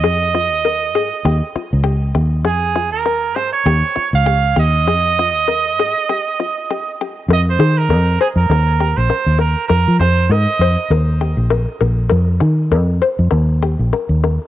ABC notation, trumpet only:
X:1
M:4/4
L:1/16
Q:"Swing 16ths" 1/4=99
K:Fm
V:1 name="Trumpet"
e8- e2 z6 | A3 B3 c d4 f3 e2- | e12- e2 z2 | e c2 B3 A B4 c3 B2 |
B2 c2 e4 z8 | z16 |]